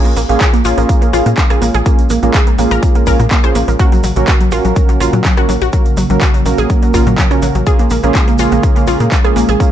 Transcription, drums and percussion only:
0.05 closed hi-hat soft
0.05 shaker soft
0.17 open hi-hat loud
0.17 shaker medium
0.29 closed hi-hat soft
0.29 shaker soft
0.41 kick loud
0.41 clap loud
0.41 closed hi-hat medium
0.41 shaker soft
0.54 closed hi-hat soft
0.54 shaker soft
0.65 open hi-hat loud
0.65 shaker medium
0.78 closed hi-hat soft
0.78 shaker soft
0.89 kick loud
0.89 closed hi-hat medium
0.89 shaker medium
1.02 closed hi-hat soft
1.02 shaker soft
1.13 cross-stick medium
1.13 open hi-hat loud
1.13 shaker medium
1.26 closed hi-hat soft
1.26 shaker soft
1.37 kick loud
1.37 clap loud
1.37 closed hi-hat medium
1.37 shaker soft
1.50 cross-stick medium
1.50 closed hi-hat soft
1.50 shaker soft
1.62 open hi-hat loud
1.62 shaker medium
1.74 closed hi-hat soft
1.74 shaker soft
1.86 kick loud
1.86 closed hi-hat medium
1.86 shaker medium
1.99 closed hi-hat soft
1.99 shaker soft
2.10 open hi-hat loud
2.10 shaker medium
2.23 closed hi-hat soft
2.23 shaker soft
2.34 kick loud
2.34 clap loud
2.34 closed hi-hat medium
2.34 shaker soft
2.47 closed hi-hat soft
2.47 shaker soft
2.58 open hi-hat medium
2.58 shaker medium
2.71 closed hi-hat soft
2.71 shaker soft
2.83 kick loud
2.83 closed hi-hat medium
2.83 shaker medium
2.95 closed hi-hat soft
2.95 shaker soft
3.07 kick medium
3.07 cross-stick medium
3.07 open hi-hat loud
3.07 shaker medium
3.20 closed hi-hat soft
3.20 shaker soft
3.31 kick loud
3.31 clap loud
3.31 closed hi-hat medium
3.31 shaker soft
3.44 cross-stick medium
3.44 closed hi-hat soft
3.44 shaker soft
3.55 open hi-hat loud
3.55 shaker medium
3.68 closed hi-hat soft
3.68 shaker soft
3.79 kick loud
3.79 closed hi-hat medium
3.79 shaker soft
3.92 closed hi-hat soft
3.92 shaker soft
4.04 open hi-hat loud
4.04 shaker medium
4.16 closed hi-hat soft
4.16 shaker soft
4.28 kick loud
4.28 clap loud
4.28 closed hi-hat medium
4.28 shaker soft
4.40 closed hi-hat soft
4.40 shaker soft
4.52 open hi-hat loud
4.52 shaker medium
4.65 closed hi-hat soft
4.65 shaker soft
4.76 kick loud
4.76 closed hi-hat medium
4.76 shaker soft
4.89 closed hi-hat soft
4.89 shaker soft
5.00 cross-stick medium
5.00 open hi-hat loud
5.00 shaker medium
5.13 closed hi-hat soft
5.13 shaker soft
5.25 kick loud
5.25 clap loud
5.25 closed hi-hat medium
5.25 shaker medium
5.37 cross-stick medium
5.37 closed hi-hat soft
5.37 shaker soft
5.49 open hi-hat loud
5.49 shaker medium
5.62 closed hi-hat soft
5.62 shaker soft
5.73 kick loud
5.73 closed hi-hat medium
5.73 shaker medium
5.85 closed hi-hat soft
5.85 shaker soft
5.97 open hi-hat loud
5.97 shaker loud
6.10 closed hi-hat soft
6.10 shaker soft
6.21 kick loud
6.21 clap loud
6.21 closed hi-hat medium
6.21 shaker medium
6.34 closed hi-hat soft
6.34 shaker soft
6.46 open hi-hat loud
6.46 shaker medium
6.58 closed hi-hat soft
6.58 shaker soft
6.70 kick loud
6.70 closed hi-hat medium
6.70 shaker soft
6.83 closed hi-hat soft
6.83 shaker soft
6.94 kick medium
6.94 cross-stick medium
6.94 open hi-hat loud
6.94 shaker medium
7.07 closed hi-hat soft
7.07 shaker soft
7.18 kick loud
7.18 clap loud
7.18 closed hi-hat medium
7.18 shaker medium
7.31 cross-stick medium
7.31 closed hi-hat soft
7.31 shaker soft
7.42 open hi-hat loud
7.42 shaker medium
7.55 closed hi-hat soft
7.55 shaker soft
7.67 kick loud
7.67 closed hi-hat medium
7.67 shaker medium
7.79 closed hi-hat soft
7.79 shaker soft
7.90 open hi-hat loud
7.90 shaker medium
8.03 closed hi-hat soft
8.03 shaker soft
8.15 kick loud
8.15 clap loud
8.15 closed hi-hat medium
8.15 shaker medium
8.28 closed hi-hat soft
8.28 shaker soft
8.39 open hi-hat medium
8.39 shaker medium
8.52 closed hi-hat soft
8.52 shaker soft
8.63 kick loud
8.63 closed hi-hat medium
8.63 shaker soft
8.76 closed hi-hat soft
8.76 shaker soft
8.87 cross-stick medium
8.87 open hi-hat loud
8.87 shaker medium
9.00 closed hi-hat soft
9.00 shaker soft
9.12 kick loud
9.12 clap loud
9.12 closed hi-hat medium
9.12 shaker medium
9.24 cross-stick medium
9.24 closed hi-hat soft
9.24 shaker soft
9.36 open hi-hat loud
9.36 shaker medium
9.49 closed hi-hat soft
9.49 shaker soft
9.60 kick loud
9.60 closed hi-hat medium
9.60 shaker soft

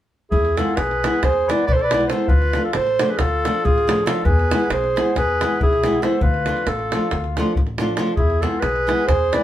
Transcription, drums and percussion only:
0.31 davul low medium
0.45 davul high soft
0.57 davul high medium
0.77 davul high medium
0.91 davul high soft
1.04 davul high medium
1.23 davul high medium
1.23 davul low medium
1.50 davul high medium
1.69 davul low medium
1.79 davul high soft
1.91 davul high medium
2.01 davul high soft
2.10 davul high medium
2.28 davul low medium
2.42 davul high soft
2.53 davul high medium
2.73 davul high medium
2.87 davul high soft
2.99 davul high medium
3.19 davul high medium
3.19 davul low medium
3.45 davul high medium
3.65 davul low medium
3.78 davul high soft
3.89 davul high medium
4.07 davul high medium
4.26 davul low loud
4.39 davul high soft
4.51 davul high medium
4.70 davul high medium
4.84 davul high soft
4.97 davul high medium
5.16 davul high medium
5.16 davul low medium
5.41 davul high medium
5.61 davul low medium
5.73 davul high soft
5.83 davul high medium
5.93 davul high soft
6.03 davul high medium
6.21 davul low medium
6.34 davul high soft
6.46 davul high medium
6.57 davul high soft
6.67 davul high medium
6.79 davul high soft
6.92 davul high medium
7.11 davul high medium
7.24 davul high soft
7.37 davul high medium
7.47 davul high soft
7.56 davul low medium
7.67 davul high soft
7.78 davul high medium
7.97 davul high medium
8.07 davul high soft
8.17 davul low medium
8.30 davul high soft
8.43 davul high medium
8.62 davul high medium
8.76 davul high soft
8.89 davul high medium
9.09 davul high medium
9.09 davul low medium
9.33 davul high medium

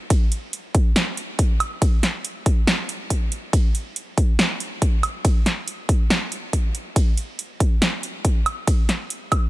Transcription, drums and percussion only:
0.10 kick loud
0.10 closed hi-hat medium
0.10 ride soft
0.32 closed hi-hat medium
0.53 closed hi-hat medium
0.75 kick loud
0.75 closed hi-hat medium
0.96 snare loud
0.96 closed hi-hat medium
1.17 closed hi-hat medium
1.39 kick loud
1.39 closed hi-hat medium
1.60 closed hi-hat medium
1.60 high woodblock medium
1.82 kick loud
1.82 closed hi-hat medium
1.82 ride soft
2.03 snare medium
2.03 closed hi-hat medium
2.25 closed hi-hat medium
2.46 kick loud
2.46 closed hi-hat medium
2.67 snare loud
2.67 closed hi-hat medium
2.89 closed hi-hat medium
3.10 kick medium
3.10 closed hi-hat medium
3.32 closed hi-hat medium
3.53 kick loud
3.53 closed hi-hat medium
3.53 ride soft
3.75 closed hi-hat medium
3.96 closed hi-hat medium
4.18 kick loud
4.18 closed hi-hat medium
4.39 snare loud
4.39 closed hi-hat medium
4.60 closed hi-hat medium
4.82 kick loud
4.82 closed hi-hat medium
5.03 closed hi-hat medium
5.03 high woodblock medium
5.25 kick loud
5.25 closed hi-hat medium
5.25 ride soft
5.46 snare medium
5.46 closed hi-hat medium
5.68 closed hi-hat medium
5.89 kick loud
5.89 closed hi-hat medium
6.10 snare loud
6.10 closed hi-hat medium
6.32 closed hi-hat medium
6.53 kick medium
6.53 closed hi-hat medium
6.75 closed hi-hat medium
6.96 kick loud
6.96 closed hi-hat medium
6.96 ride soft
7.18 closed hi-hat medium
7.39 closed hi-hat medium
7.60 kick loud
7.60 closed hi-hat medium
7.82 snare loud
7.82 closed hi-hat medium
8.03 closed hi-hat medium
8.25 kick loud
8.25 closed hi-hat medium
8.46 closed hi-hat medium
8.46 high woodblock medium
8.68 kick loud
8.68 closed hi-hat medium
8.68 ride soft
8.89 snare medium
8.89 closed hi-hat medium
9.10 closed hi-hat medium
9.32 kick loud
9.32 closed hi-hat medium
9.32 high woodblock medium

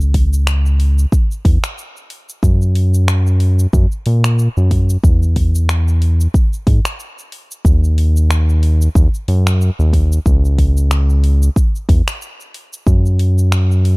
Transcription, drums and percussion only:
0.01 shaker soft
0.14 kick medium
0.14 open hi-hat medium
0.33 shaker medium
0.47 finger snap medium
0.47 shaker medium
0.66 shaker soft
0.80 open hi-hat medium
0.98 shaker medium
1.12 kick loud
1.12 shaker medium
1.31 shaker soft
1.45 kick loud
1.45 open hi-hat medium
1.64 finger snap medium
1.64 shaker medium
1.78 shaker medium
1.97 shaker soft
2.10 open hi-hat medium
2.29 shaker medium
2.43 kick loud
2.43 shaker medium
2.62 shaker soft
2.75 open hi-hat medium
2.94 shaker medium
3.08 finger snap medium
3.08 shaker medium
3.27 shaker soft
3.40 open hi-hat medium
3.59 shaker medium
3.73 kick loud
3.73 shaker medium
3.92 shaker soft
4.06 open hi-hat medium
4.24 finger snap medium
4.24 shaker medium
4.39 shaker medium
4.57 shaker soft
4.71 kick medium
4.71 open hi-hat medium
4.90 shaker medium
5.04 kick loud
5.04 shaker medium
5.23 shaker soft
5.36 kick medium
5.36 open hi-hat medium
5.55 shaker medium
5.69 finger snap medium
5.69 shaker medium
5.88 shaker soft
6.02 open hi-hat medium
6.21 shaker medium
6.34 kick loud
6.34 shaker medium
6.53 shaker soft
6.67 kick loud
6.67 open hi-hat medium
6.85 finger snap medium
6.85 shaker medium
7.00 shaker medium
7.19 shaker soft
7.32 open hi-hat medium
7.51 shaker medium
7.65 kick loud
7.65 shaker medium
7.84 shaker soft
7.98 open hi-hat medium
8.17 shaker medium
8.31 finger snap medium
8.31 shaker medium
8.49 shaker soft
8.63 open hi-hat medium
8.82 shaker medium
8.95 kick loud
8.95 shaker medium
9.14 shaker soft
9.28 open hi-hat medium
9.47 finger snap medium
9.47 shaker medium
9.61 shaker medium
9.80 shaker soft
9.93 kick medium
9.93 open hi-hat medium
10.12 shaker medium
10.26 kick loud
10.26 shaker medium
10.45 shaker soft
10.58 kick medium
10.58 open hi-hat medium
10.77 shaker medium
10.91 finger snap medium
10.91 shaker medium
11.10 shaker soft
11.24 open hi-hat medium
11.43 shaker medium
11.56 kick loud
11.56 shaker medium
11.76 shaker soft
11.89 kick loud
11.89 open hi-hat medium
12.08 finger snap medium
12.08 shaker medium
12.22 shaker medium
12.41 shaker soft
12.54 open hi-hat medium
12.73 shaker medium
12.87 kick loud
12.87 shaker medium
13.06 shaker soft
13.19 open hi-hat medium
13.38 shaker medium
13.52 finger snap medium
13.52 shaker medium
13.71 shaker soft
13.85 open hi-hat medium

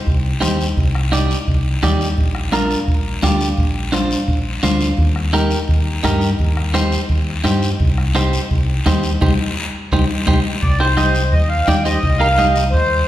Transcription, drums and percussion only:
0.06 bombo low medium
0.06 high conga soft
0.06 long guiro medium
0.42 bombo rim medium
0.42 high conga medium
0.42 short guiro medium
0.61 short guiro medium
0.77 bombo low medium
0.77 high conga soft
0.77 long guiro medium
0.95 bombo rim medium
1.12 bombo rim medium
1.12 high conga medium
1.12 short guiro medium
1.31 short guiro medium
1.48 bombo low medium
1.48 high conga soft
1.48 long guiro medium
1.83 bombo low medium
1.83 bombo rim medium
1.83 high conga medium
1.83 short guiro medium
2.01 short guiro medium
2.17 bombo low medium
2.17 high conga soft
2.17 long guiro medium
2.35 bombo rim medium
2.52 bombo rim medium
2.52 high conga medium
2.52 short guiro medium
2.71 short guiro medium
2.88 bombo low medium
2.88 high conga soft
2.88 long guiro medium
3.22 bombo low medium
3.22 bombo rim medium
3.22 high conga medium
3.22 short guiro medium
3.41 short guiro medium
3.58 bombo low medium
3.58 high conga soft
3.58 long guiro medium
3.92 bombo rim medium
3.92 high conga medium
3.92 short guiro medium
4.11 short guiro medium
4.28 bombo low medium
4.28 high conga soft
4.28 long guiro medium
4.63 bombo rim medium
4.63 high conga medium
4.63 short guiro medium
4.81 short guiro medium
4.97 bombo low medium
4.97 high conga soft
4.97 long guiro medium
5.16 bombo rim medium
5.33 bombo rim medium
5.33 high conga medium
5.33 short guiro medium
5.51 short guiro medium
5.68 bombo low medium
5.68 high conga soft
5.68 long guiro medium
6.04 bombo low medium
6.04 bombo rim medium
6.04 high conga medium
6.04 short guiro medium
6.21 short guiro medium
6.39 bombo low medium
6.39 high conga soft
6.39 long guiro medium
6.57 bombo rim medium
6.74 bombo rim medium
6.74 high conga medium
6.74 short guiro medium
6.92 short guiro medium
7.09 bombo low medium
7.09 high conga soft
7.09 long guiro medium
7.44 bombo rim medium
7.44 high conga medium
7.44 short guiro medium
7.62 short guiro medium
7.80 bombo low medium
7.80 high conga soft
7.80 long guiro medium
7.98 bombo rim medium
8.14 bombo rim medium
8.14 high conga medium
8.14 short guiro medium
8.33 short guiro medium
8.51 bombo low medium
8.51 high conga soft
8.51 long guiro medium
8.86 bombo low medium
8.86 bombo rim medium
8.86 high conga medium
8.86 short guiro medium
9.03 short guiro medium
9.21 bombo low loud
9.21 high conga medium
9.21 long guiro medium
9.92 bombo low medium
9.92 high conga medium
9.92 long guiro loud
10.27 bombo low medium
10.27 high conga medium
10.27 long guiro medium
10.62 bombo low medium
10.62 high conga soft
10.62 long guiro medium
10.80 bombo rim medium
10.97 bombo rim medium
10.97 high conga medium
10.97 short guiro medium
11.15 short guiro medium
11.32 bombo low medium
11.32 high conga soft
11.32 long guiro medium
11.67 bombo low medium
11.67 bombo rim medium
11.67 high conga medium
11.67 short guiro medium
11.85 short guiro medium
12.03 bombo low medium
12.03 high conga soft
12.03 long guiro medium
12.39 bombo rim medium
12.39 high conga medium
12.39 short guiro medium
12.56 short guiro medium
12.74 bombo low medium
12.74 high conga soft
12.74 long guiro medium

